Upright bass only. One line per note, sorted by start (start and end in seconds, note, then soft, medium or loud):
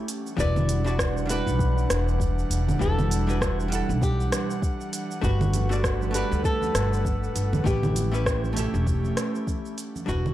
0.38 1.37 E1 loud
1.47 1.83 B1 medium
1.90 2.44 E1 medium
2.50 2.72 E1 medium
2.80 3.80 E1 loud
3.89 4.25 B1 loud
5.23 6.22 G1 loud
6.31 6.68 D2 loud
6.75 7.28 G1 medium
7.35 7.57 G1 medium
7.65 8.65 A1 loud
8.74 9.10 E1 medium
10.08 10.34 E1 loud